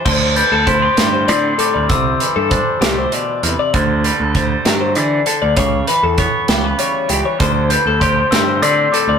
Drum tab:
CC |x-----|------|------|------|
HH |-xxxxx|xxxxxx|xxxxxx|xxxxxx|
SD |---o--|---o--|---o--|---o--|
BD |o-o---|o-o---|o-o---|o-o---|

CC |------|
HH |xxxxxx|
SD |---o--|
BD |o-o---|